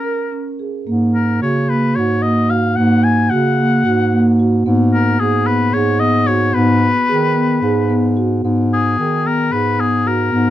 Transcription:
0.00 0.56 A#4 medium
0.04 0.25 A#4 medium
0.32 0.52 C#4 soft
0.59 0.80 G#4 soft
0.87 1.38 G#2 medium
0.87 1.27 A#3 medium
1.15 1.40 A#4 medium
1.42 1.93 C#3 medium
1.42 1.62 F#4 medium
1.42 1.71 C#5 medium
1.69 1.89 A#3 soft
1.69 1.97 B4 medium
1.95 2.74 G#2 medium
1.95 2.16 F#4 medium
1.95 2.24 C#5 medium
2.22 2.43 A#3 medium
2.22 2.51 D#5 medium
2.50 2.70 F#4 soft
2.50 2.77 F5 medium
2.76 3.28 G#2 medium
2.76 3.17 A#3 medium
2.76 3.05 F#5 medium
3.04 3.32 G#5 medium
3.30 3.82 C#3 medium
3.30 3.51 F#4 medium
3.30 4.39 F#5 medium
3.58 3.78 A#3 medium
3.85 4.62 G#2 medium
3.85 4.05 F#4 medium
4.12 4.32 A#3 medium
4.39 4.59 F#4 medium
4.66 5.16 G#2 medium
4.66 5.06 B3 medium
4.94 5.21 A#4 medium
5.20 5.70 G#2 medium
5.20 5.48 G#4 medium
5.20 5.40 G#4 medium
5.47 5.66 B3 medium
5.47 5.75 B4 medium
5.73 6.50 G#2 medium
5.73 5.93 G#4 medium
5.73 6.01 C#5 medium
6.00 6.20 B3 medium
6.00 6.28 D#5 medium
6.27 6.47 F#4 medium
6.27 6.56 C#5 medium
6.54 6.94 G#2 medium
6.54 6.94 B3 medium
6.54 8.17 B4 medium
7.09 7.59 D#3 medium
7.09 7.28 G#4 medium
7.35 7.55 B3 medium
7.62 8.40 G#2 medium
7.62 7.83 G#4 medium
7.89 8.10 B3 medium
8.17 8.37 F#4 medium
8.44 8.94 G#2 medium
8.44 8.84 B3 medium
8.73 9.28 G#4 medium
8.98 9.48 D#3 medium
8.98 9.18 G#4 medium
9.25 9.45 B3 medium
9.25 9.54 A#4 medium
9.52 10.28 G#2 medium
9.52 9.71 G#4 medium
9.52 9.82 B4 medium
9.78 9.98 B3 medium
9.78 10.09 G#4 medium
10.05 10.25 F#4 medium
10.05 10.50 A#4 medium
10.32 10.50 G#2 medium
10.32 10.50 B3 medium

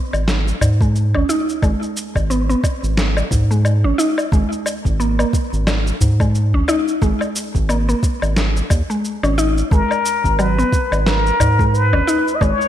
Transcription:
0.13 0.53 G#1 medium
0.13 low woodblock medium
0.13 shaker soft
0.28 snare medium
0.28 shaker soft
0.48 shaker soft
0.61 1.16 G#2 medium
0.61 udu medium
0.61 low woodblock medium
0.61 shaker medium
0.81 0.89 G#3 medium
0.81 kick loud
0.81 shaker soft
0.96 shaker soft
1.14 1.23 G#1 medium
1.14 1.28 C#4 medium
1.14 udu medium
1.14 low woodblock medium
1.29 1.47 D#4 loud
1.29 shaker medium
1.49 shaker soft
1.62 1.75 G#1 medium
1.62 2.29 G#3 medium
1.62 kick loud
1.62 udu medium
1.62 low woodblock medium
1.62 shaker soft
1.83 shaker soft
1.97 shaker medium
2.15 2.55 G#1 medium
2.15 kick medium
2.15 low woodblock medium
2.15 shaker soft
2.30 2.41 B3 medium
2.30 shaker soft
2.49 2.63 B3 medium
2.49 shaker soft
2.64 kick loud
2.64 low woodblock medium
2.64 shaker medium
2.83 3.23 G#1 medium
2.83 shaker soft
2.97 snare medium
2.97 shaker soft
3.17 low woodblock medium
3.17 shaker soft
3.31 3.86 G#2 medium
3.31 kick loud
3.31 udu loud
3.31 shaker medium
3.51 3.59 G#3 medium
3.51 shaker soft
3.65 low woodblock medium
3.65 shaker soft
3.84 3.93 G#1 medium
3.84 3.98 C#4 medium
3.98 4.17 D#4 loud
3.98 shaker medium
4.18 low woodblock medium
4.18 shaker soft
4.32 4.44 G#1 loud
4.32 4.98 G#3 medium
4.32 kick loud
4.32 udu medium
4.32 shaker soft
4.52 shaker soft
4.66 low woodblock medium
4.66 shaker medium
4.85 5.25 G#1 medium
4.85 kick medium
4.85 shaker soft
5.00 5.11 A#3 medium
5.00 shaker soft
5.19 5.33 A#3 medium
5.19 low woodblock medium
5.19 shaker soft
5.33 kick loud
5.33 shaker medium
5.53 5.92 G#1 medium
5.53 shaker soft
5.67 snare medium
5.67 low woodblock medium
5.67 shaker soft
5.87 shaker soft
6.01 6.55 G#2 medium
6.01 udu medium
6.01 shaker medium
6.20 6.28 G#3 medium
6.20 kick loud
6.20 low woodblock medium
6.20 shaker soft
6.35 shaker soft
6.53 6.63 G#1 medium
6.53 6.68 C#4 medium
6.53 udu medium
6.68 6.87 D#4 loud
6.68 low woodblock medium
6.68 shaker medium
6.88 shaker soft
7.02 7.14 G#1 medium
7.02 7.68 G#3 medium
7.02 kick loud
7.02 udu medium
7.02 shaker soft
7.21 low woodblock medium
7.21 shaker soft
7.36 shaker medium
7.55 7.94 G#1 medium
7.55 kick medium
7.55 shaker soft
7.69 7.80 A#3 medium
7.69 low woodblock medium
7.69 shaker soft
7.89 8.02 A#3 medium
7.89 shaker soft
8.03 kick loud
8.03 shaker medium
8.22 8.62 G#1 medium
8.22 low woodblock medium
8.22 shaker soft
8.36 snare medium
8.36 shaker soft
8.57 shaker soft
8.70 8.82 D#2 medium
8.70 kick loud
8.70 udu medium
8.70 low woodblock medium
8.70 shaker medium
8.90 8.98 G#3 medium
8.90 shaker soft
9.05 shaker soft
9.23 9.63 G#1 medium
9.23 9.37 C#4 medium
9.23 low woodblock medium
9.23 shaker soft
9.38 9.56 D#4 loud
9.38 shaker medium
9.58 shaker soft
9.71 9.83 G#1 medium
9.71 10.38 G#3 medium
9.71 10.40 A#4 medium
9.71 kick loud
9.71 udu medium
9.71 shaker soft
9.91 low woodblock medium
9.91 shaker soft
10.06 shaker medium
10.24 10.64 G#1 medium
10.24 kick medium
10.24 shaker soft
10.39 10.50 F#3 medium
10.39 11.08 B4 medium
10.39 low woodblock medium
10.39 shaker soft
10.58 10.72 B3 medium
10.58 shaker soft
10.73 kick loud
10.73 shaker medium
10.92 11.31 G#1 medium
10.92 low woodblock medium
10.92 shaker soft
11.06 11.76 A#4 loud
11.06 snare medium
11.06 shaker soft
11.26 shaker soft
11.40 11.95 G#2 medium
11.40 udu medium
11.40 low woodblock medium
11.40 shaker medium
11.59 11.68 G#3 medium
11.59 kick loud
11.59 shaker soft
11.74 12.37 B4 medium
11.74 shaker soft
11.93 12.02 G#1 medium
11.93 12.07 C#4 medium
11.93 udu medium
11.93 low woodblock medium
12.07 12.26 D#4 medium
12.07 shaker medium
12.28 shaker soft
12.35 12.43 D#5 medium
12.41 12.53 G#1 medium
12.41 12.68 G#3 medium
12.41 12.68 C#5 loud
12.41 kick loud
12.41 udu medium
12.41 low woodblock medium
12.41 shaker soft
12.61 shaker soft

